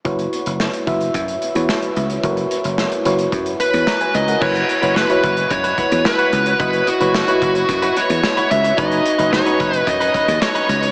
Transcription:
0.05 F#1 E4 F#4 B4 C#5, kick, closed hi-hat
0.19 closed hi-hat
0.33 closed hi-hat
0.46 F#1, closed hi-hat
0.60 snare
0.73 closed hi-hat
0.87 F#1 E4 F#4 B4 E5, kick, closed hi-hat
1.01 closed hi-hat
1.14 F#2, kick, closed hi-hat
1.28 closed hi-hat
1.42 closed hi-hat
1.55 E2 E4 F#4 B4 C#5, closed hi-hat
1.69 snare
1.82 closed hi-hat
1.96 C#2, closed hi-hat
2.10 closed hi-hat
2.23 F#1 E4 F#4 A#4 C#5, kick, closed hi-hat
2.30 B4
2.37 closed hi-hat
2.51 closed hi-hat
2.64 F#1, closed hi-hat
2.78 snare
2.92 closed hi-hat
3.05 F#1 E4 F#4 B4 C#5, closed hi-hat
3.19 closed hi-hat
3.32 F#2, kick, closed hi-hat
3.46 closed hi-hat
3.60 B4, closed hi-hat
3.73 E2, closed hi-hat
3.87 C#5 A#5, snare
4.01 B4 G#5, closed hi-hat
4.14 C#2 D#5, closed hi-hat
4.28 A#4 F#5, closed hi-hat
4.41 F#1 E4 F#4 B4 C#5, kick, crash
4.55 closed hi-hat
4.69 muted clean electric guitar stroke, closed hi-hat
4.82 F#1 E4 F#4 B4 C#5, closed hi-hat
4.96 B4, snare
5.09 E4 F#4 B4 C#5, closed hi-hat
5.23 F#1 E4 F#4 B4, kick, closed hi-hat
5.37 muted clean electric guitar stroke, closed hi-hat
5.50 F#2 C#5, muted clean electric guitar stroke, kick, closed hi-hat
5.64 E4 F#4 B4, closed hi-hat
5.78 E4 F#4 B4, kick, closed hi-hat
5.91 E2, muted clean electric guitar stroke, closed hi-hat
6.05 B4, muted clean electric guitar stroke, snare
6.18 E4 F#4 B4, closed hi-hat
6.32 C#2, muted clean electric guitar stroke, closed hi-hat
6.46 muted clean electric guitar stroke, closed hi-hat
6.59 F#1 E4 F#4 B4 D#5, kick, closed hi-hat
6.73 closed hi-hat
6.87 F#4, muted clean electric guitar stroke, closed hi-hat
7.00 F#1 E4 F#4 B4 C#5, closed hi-hat
7.14 muted clean electric guitar stroke, snare
7.28 E4 F#4 B4 C#5, closed hi-hat
7.41 F#1 E4 F#4 B4, kick, closed hi-hat
7.55 muted clean electric guitar stroke, closed hi-hat
7.69 F#2, muted clean electric guitar stroke, kick, closed hi-hat
7.82 E4 F#4 B4, closed hi-hat
7.96 E4 F#4 B4 C#5, closed hi-hat
8.10 E2, muted clean electric guitar stroke, closed hi-hat
8.23 muted clean electric guitar stroke, snare
8.37 E4 F#4 B4, closed hi-hat
8.51 C#2 E5, muted clean electric guitar stroke, closed hi-hat
8.64 muted clean electric guitar stroke, closed hi-hat
8.77 F#1 C#4 D#4 F#4 B4 C#5 D#5, kick, closed hi-hat
8.91 closed hi-hat
9.05 muted clean electric guitar stroke, closed hi-hat
9.18 F#1 C#4 D#4 F#4 B4 D#5, closed hi-hat
9.32 C#5, muted clean electric guitar stroke, snare
9.46 C#4 D#4 F#4 B4 C#5, closed hi-hat
9.59 F#1 C#4 D#4 B4, kick, closed hi-hat
9.73 B4, muted clean electric guitar stroke, closed hi-hat
9.87 F#2 D#5, muted clean electric guitar stroke, kick, closed hi-hat
10.00 C#4 D#4 B4, closed hi-hat
10.14 C#4 D#4 B4, kick, closed hi-hat
10.28 D#2, muted clean electric guitar stroke, closed hi-hat
10.41 C#5, muted clean electric guitar stroke, snare
10.55 C#4 D#4 B4, closed hi-hat
10.69 C#2, muted clean electric guitar stroke, closed hi-hat
10.83 muted clean electric guitar stroke, closed hi-hat

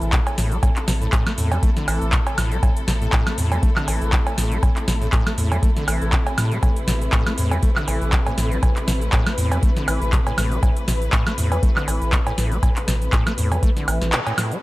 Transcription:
Already playing: C3 E3 A3 E4 A4
0.02 A1, closed hi-hat, shaker
0.12 A2, kick, clap, closed hi-hat, shaker
0.27 closed hi-hat, cowbell, shaker
0.38 A1 A2, snare, open hi-hat, shaker
0.52 A3, closed hi-hat, shaker
0.63 A2, kick, closed hi-hat, cowbell, shaker
0.76 clap, closed hi-hat, shaker
0.88 A1 B2, snare, open hi-hat, shaker
1.02 A2, closed hi-hat, shaker
1.12 A2, kick, clap, closed hi-hat, cowbell, shaker
1.26 A3, snare, closed hi-hat, high woodblock, shaker
1.38 E2 A2, open hi-hat, shaker
1.52 A3, closed hi-hat, cowbell, shaker
1.63 A3, kick, closed hi-hat, shaker
1.77 D3, snare, closed hi-hat, shaker
1.88 A1 E3, open hi-hat, cowbell, high woodblock, shaker
2.02 A1, closed hi-hat, shaker
2.12 A2, kick, clap, closed hi-hat, shaker
2.27 closed hi-hat, cowbell, shaker
2.38 A1 A2, snare, open hi-hat, high woodblock, shaker
2.51 A3, closed hi-hat, shaker
2.63 A2, kick, closed hi-hat, cowbell, shaker
2.77 closed hi-hat, shaker
2.88 A1 B2, snare, open hi-hat, shaker
3.02 A2, closed hi-hat, shaker
3.13 A2, kick, clap, closed hi-hat, cowbell, shaker
3.27 A3, snare, closed hi-hat, high woodblock, shaker
3.38 E2 A2, open hi-hat, shaker
3.52 A3, closed hi-hat, cowbell, shaker
3.63 A3, kick, closed hi-hat, shaker
3.76 D3, snare, clap, high woodblock, shaker
3.88 A1 E3, open hi-hat, cowbell, shaker
4.02 A1, closed hi-hat, shaker
4.12 A2, kick, clap, closed hi-hat, shaker
4.27 closed hi-hat, cowbell, shaker
4.38 A1 A2, snare, open hi-hat, shaker
4.52 A3, closed hi-hat, shaker
4.63 A2, kick, closed hi-hat, cowbell, shaker
4.76 clap, closed hi-hat, shaker
4.88 A1 B2, snare, open hi-hat, shaker
5.02 A2, closed hi-hat, shaker
5.12 A2, kick, clap, closed hi-hat, cowbell, shaker
5.26 A3, snare, closed hi-hat, high woodblock, shaker
5.38 E2 A2, open hi-hat, shaker
5.51 A3, closed hi-hat, cowbell, shaker
5.63 A3, kick, closed hi-hat, shaker
5.76 D3, snare, closed hi-hat, shaker
5.88 A1 E3, open hi-hat, cowbell, high woodblock, shaker
6.02 A1, closed hi-hat, shaker
6.12 A2, kick, clap, closed hi-hat, shaker
6.27 closed hi-hat, cowbell, shaker
6.38 A2, snare, open hi-hat, high woodblock, shaker
6.51 A3, closed hi-hat, shaker
6.63 A2 B4, kick, closed hi-hat, cowbell, shaker
6.76 closed hi-hat, shaker
6.88 A1 B2, snare, open hi-hat, shaker
7.01 closed hi-hat, shaker
7.12 A2, kick, clap, closed hi-hat, cowbell, shaker
7.26 A3, snare, closed hi-hat, high woodblock, shaker
7.38 E2 A2, open hi-hat, shaker
7.51 A3, closed hi-hat, cowbell, shaker
7.63 A3, kick, closed hi-hat, shaker
7.76 D3, snare, clap, high woodblock, shaker
7.88 A1 E3, open hi-hat, cowbell, shaker
8.01 A1, closed hi-hat, shaker
8.12 A2, kick, clap, closed hi-hat, shaker
8.26 A2, closed hi-hat, cowbell, shaker
8.38 A1 A2, snare, open hi-hat, shaker
8.51 A3, closed hi-hat, shaker
8.63 A2, kick, closed hi-hat, cowbell, shaker
8.76 clap, closed hi-hat, shaker
8.88 A1 B2, snare, open hi-hat, shaker
9.01 closed hi-hat, shaker
9.12 A2, kick, clap, closed hi-hat, cowbell, shaker
9.26 A3, snare, closed hi-hat, high woodblock, shaker
9.38 E2 A2, open hi-hat, shaker
9.51 A3, closed hi-hat, cowbell, shaker
9.63 A3, kick, closed hi-hat, shaker
9.76 D3, snare, closed hi-hat, shaker
9.88 A1 E3, open hi-hat, cowbell, high woodblock, shaker
10.02 A1, closed hi-hat, shaker
10.12 A2, kick, clap, closed hi-hat, shaker
10.26 A2, closed hi-hat, cowbell, shaker
10.38 A1 A2, snare, open hi-hat, high woodblock, shaker
10.51 A3, closed hi-hat, shaker
10.63 A2, kick, closed hi-hat, cowbell, shaker
10.77 closed hi-hat, shaker
10.88 A1 B2, snare, open hi-hat, shaker
11.02 closed hi-hat, shaker
11.12 A2, kick, clap, closed hi-hat, cowbell, shaker
11.27 A3, snare, closed hi-hat, high woodblock, shaker
11.38 E2 A2, open hi-hat, shaker
11.52 A3, closed hi-hat, cowbell, shaker
11.63 A3, kick, closed hi-hat, shaker
11.76 D3, snare, clap, high woodblock, shaker
11.88 A1 E3, open hi-hat, cowbell, shaker
12.02 A1, closed hi-hat, shaker
12.12 A2, kick, clap, closed hi-hat, shaker
12.27 A2, closed hi-hat, cowbell, shaker
12.38 A1 A2, snare, open hi-hat, shaker
12.52 A3, closed hi-hat, shaker
12.63 A2, kick, closed hi-hat, cowbell, shaker
12.76 clap, closed hi-hat, shaker
12.88 A1 B2, snare, open hi-hat, shaker
13.02 closed hi-hat, shaker
13.13 A2, kick, clap, closed hi-hat, cowbell, shaker
13.26 A3, snare, closed hi-hat, high woodblock, shaker
13.38 E2 A2, open hi-hat, shaker
13.51 A3, closed hi-hat, cowbell, shaker
13.63 A3, kick, closed hi-hat, shaker
13.77 D3, snare, closed hi-hat, shaker
13.88 A1 E3, open hi-hat, cowbell, high woodblock, shaker
14.02 A1, snare, closed hi-hat, shaker
14.12 A2, clap, closed hi-hat, shaker
14.27 A2, closed hi-hat, cowbell, shaker
14.38 A2, snare, open hi-hat, high woodblock, shaker
14.52 A3, closed hi-hat, shaker

